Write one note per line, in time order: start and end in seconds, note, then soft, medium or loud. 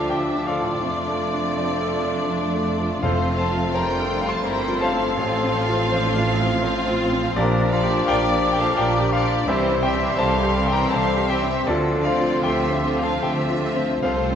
0.00 0.79 D2 medium
0.00 0.78 D3 soft
0.00 0.35 F3 soft
0.00 0.78 F3 soft
0.00 0.82 F3 soft
0.00 2.98 A3 soft
0.00 0.12 D4 soft
0.00 0.80 D4 soft
0.00 0.78 F4 soft
0.00 0.85 F4 soft
0.00 0.13 A4 medium
0.00 0.48 A4 soft
0.00 0.48 D5 medium
0.00 0.47 F5 medium
0.00 0.10 G5 medium
0.00 0.85 A5 medium
0.00 2.98 D6 soft
0.09 1.55 D4 soft
0.09 0.50 D4 soft
0.09 0.50 G4 medium
0.09 0.46 E5 medium
0.09 0.44 G5 medium
0.35 0.73 F3 soft
0.46 3.03 F4 medium
0.46 1.80 A4 soft
0.46 3.02 D5 medium
0.46 1.56 D5 soft
0.46 2.99 F5 medium
0.60 0.84 A2 soft
0.81 2.99 F1 soft
0.81 2.98 F2 medium
0.81 2.99 F2 medium
0.81 2.26 F3 medium
0.81 4.88 A3 medium
0.81 3.02 D4 medium
0.81 1.54 D4 medium
1.08 1.47 A3 soft
1.33 1.71 D4 soft
1.56 1.92 C4 medium
1.56 2.99 D4 soft
1.56 1.95 D5 soft
1.81 2.19 A4 soft
1.92 2.27 D4 medium
2.05 2.43 D5 medium
2.29 3.01 A3 soft
2.29 3.01 D4 soft
2.29 2.68 D4 soft
2.54 2.93 A3 soft
2.79 3.03 F3 soft
3.02 4.43 F1 medium
3.02 4.42 F2 medium
3.02 4.41 F2 medium
3.02 4.06 F2 medium
3.02 3.73 A3 medium
3.02 5.15 A3 medium
3.02 7.21 C4 medium
3.02 3.75 C4 medium
3.02 3.73 F4 soft
3.02 3.40 F4 medium
3.02 3.37 A4 soft
3.02 3.38 C5 medium
3.02 3.37 C5 medium
3.02 3.36 F5 medium
3.02 7.05 C6 medium
3.28 3.66 A3 soft
3.38 3.77 A4 medium
3.38 3.75 F5 medium
3.38 3.72 A5 medium
3.51 3.89 F4 soft
3.73 5.19 G3 medium
3.73 4.46 D4 medium
3.73 4.43 F4 medium
3.73 4.28 A#4 medium
3.73 4.12 C5 medium
3.73 4.27 G5 medium
3.73 4.24 A#5 medium
3.99 4.36 A4 medium
4.21 4.59 F5 medium
4.27 4.46 C5 medium
4.27 4.45 A5 medium
4.27 4.44 C6 medium
4.43 5.17 G1 medium
4.43 5.17 G2 medium
4.43 5.18 C4 medium
4.43 5.17 E4 medium
4.43 4.83 A#4 medium
4.43 4.81 C5 soft
4.43 4.82 G5 medium
4.43 4.79 A#5 medium
4.68 5.08 F4 medium
4.81 7.09 A4 medium
4.81 5.90 C5 medium
4.81 7.32 F5 medium
4.81 6.39 F5 medium
4.81 7.32 A5 medium
4.92 5.18 A3 soft
5.17 7.31 A1 medium
5.17 7.37 A1 medium
5.17 7.36 A2 medium
5.17 9.43 F3 medium
5.17 9.44 F3 medium
5.17 5.91 F3 medium
5.17 5.91 C4 medium
5.17 6.61 F4 medium
5.43 5.82 C4 medium
5.68 6.06 F4 medium
5.92 6.62 F3 medium
5.92 6.28 D4 medium
5.92 6.30 C5 medium
6.16 6.54 F4 medium
6.28 6.63 C4 medium
6.40 6.78 F5 medium
6.63 7.37 C4 medium
6.63 7.35 F4 medium
6.63 7.36 F4 medium
6.63 7.02 C5 medium
6.88 7.27 F4 medium
7.12 7.36 C4 medium
7.36 9.43 A#1 medium
7.36 7.99 A#1 medium
7.36 7.99 A#2 medium
7.36 7.75 D4 medium
7.36 9.44 D4 medium
7.36 7.70 G4 medium
7.36 7.72 A#4 medium
7.36 7.70 A#4 medium
7.36 7.70 D5 medium
7.36 9.50 D6 medium
7.60 7.98 D4 medium
7.71 8.40 F3 medium
7.71 8.41 D4 medium
7.71 8.09 F4 medium
7.71 8.40 G4 medium
7.71 8.05 D5 medium
7.71 8.05 F5 medium
7.83 8.21 G4 medium
8.06 8.68 A#1 medium
8.06 8.69 A#2 medium
8.06 8.61 G4 medium
8.06 8.56 A#4 medium
8.06 8.58 D5 medium
8.06 8.27 D5 medium
8.06 8.44 F5 medium
8.06 8.51 G5 medium
8.29 8.67 D5 medium
8.42 9.10 F3 medium
8.42 9.10 D4 medium
8.42 9.11 G4 medium
8.53 8.76 G5 medium
8.60 8.78 A4 medium
8.60 8.77 F5 medium
8.60 8.76 A5 medium
8.75 9.39 A#1 medium
8.75 9.39 A#2 medium
8.75 9.14 G4 medium
8.75 9.11 A#4 medium
8.75 9.12 D5 medium
8.75 9.11 D5 medium
8.75 9.11 F5 medium
8.75 9.10 G5 medium
9.00 9.38 G4 medium
9.12 9.47 F3 medium
9.12 9.47 D4 medium
9.12 9.47 F4 medium
9.12 9.46 G4 medium
9.12 9.48 D5 medium
9.12 9.45 F5 medium
9.23 9.47 D4 medium
9.46 11.63 C2 medium
9.46 10.10 C2 medium
9.46 10.10 C3 medium
9.46 9.82 E3 medium
9.46 11.62 G3 medium
9.46 11.50 G3 medium
9.46 13.97 C4 medium
9.46 9.82 C4 medium
9.46 9.86 E4 medium
9.46 9.82 G4 medium
9.46 9.81 G4 medium
9.46 9.83 C5 medium
9.46 9.81 C5 medium
9.46 9.80 E5 medium
9.46 11.67 C6 medium
9.71 10.09 C4 medium
9.83 10.53 E3 medium
9.83 10.53 C4 medium
9.83 10.53 G4 medium
9.83 10.21 G4 medium
9.83 10.18 E5 medium
9.83 10.16 G5 medium
9.95 10.33 G4 medium
10.18 10.82 C2 medium
10.18 10.82 C3 medium
10.18 10.75 A4 medium
10.18 10.56 C5 medium
10.18 10.73 F5 medium
10.18 10.68 A5 medium
10.43 10.81 G4 medium
10.54 11.27 E3 medium
10.54 11.28 C4 medium
10.54 11.27 G4 medium
10.67 11.06 G5 medium
10.72 10.91 A#4 medium
10.72 10.91 G5 medium
10.72 10.90 A#5 medium
10.91 11.58 C2 medium
10.91 11.59 C3 medium
10.91 11.33 A4 medium
10.91 11.33 C5 medium
10.91 11.29 F5 medium
10.91 11.26 A5 medium
11.16 11.57 G4 medium
11.28 11.66 E3 soft
11.28 11.66 C4 soft
11.28 11.66 G4 soft
11.28 11.71 G4 medium
11.28 11.67 E5 medium
11.28 11.65 G5 medium
11.43 11.68 C4 medium
11.67 12.34 D2 medium
11.67 13.99 D2 medium
11.67 12.35 D3 medium
11.67 13.98 F3 medium
11.67 13.99 F3 medium
11.67 12.09 D4 medium
11.67 12.03 F4 medium
11.67 12.05 A4 medium
11.67 12.03 A4 medium
11.67 12.02 D5 medium
11.67 13.81 C6 medium
11.94 12.34 C4 medium
12.03 12.82 A3 soft
12.03 12.82 C4 medium
12.03 12.81 F4 medium
12.03 12.46 F4 medium
12.03 12.43 D5 medium
12.03 12.41 F5 medium
12.19 12.60 F4 soft
12.42 13.13 D2 medium
12.42 13.13 D3 medium
12.42 13.06 G4 medium
12.42 12.86 A4 medium
12.42 13.01 E5 medium
12.42 12.98 G5 medium
12.70 13.12 C5 soft
12.83 13.59 A3 medium
12.83 13.60 C4 medium
12.83 13.58 F4 soft
12.96 13.38 F5 medium
13.01 13.25 A4 medium
13.01 13.21 F5 medium
13.01 13.21 A5 medium
13.21 13.93 D2 medium
13.21 13.93 D3 medium
13.21 13.74 G4 medium
13.21 13.64 A4 soft
13.21 14.02 E5 medium
13.21 13.99 G5 medium
13.49 13.92 F4 soft
13.60 14.01 A3 soft
13.60 14.01 C4 soft
13.60 14.01 F4 soft
13.76 14.03 C4 soft
14.02 14.35 C2 soft
14.02 14.35 C2 medium
14.02 14.35 C3 medium
14.02 14.35 F3 medium
14.02 14.35 A3 soft
14.02 14.35 A3 medium
14.02 14.35 C4 soft
14.02 14.35 C4 medium
14.02 14.35 F4 soft
14.02 14.35 F4 medium
14.02 14.35 A4 soft
14.02 14.35 C5 medium
14.02 14.35 F5 medium
14.02 14.35 A5 medium
14.31 14.35 C4 soft